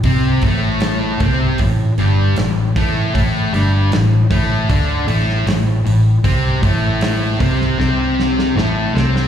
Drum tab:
HH |o-o-o-o-o-o-o-o-|o-o-o-o-o-o-o-o-|o-o-o-o---------|
SD |----o-------o---|----o------oo---|----o--oo-ooo-oo|
BD |o-o---o-o-----o-|o-----o-o-------|o-o---o---------|